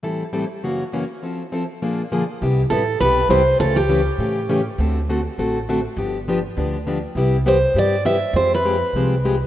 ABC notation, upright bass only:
X:1
M:4/4
L:1/8
Q:"Swing" 1/4=202
K:C
V:1 name="Upright bass" clef=bass
z8 | z8 | C,,2 A,,,2 B,,,2 C,,2 | ^C,,4 A,,4 |
D,,4 A,,,4 | G,,,4 D,,4 | C,,4 G,,4 | F,,4 C,,4 |]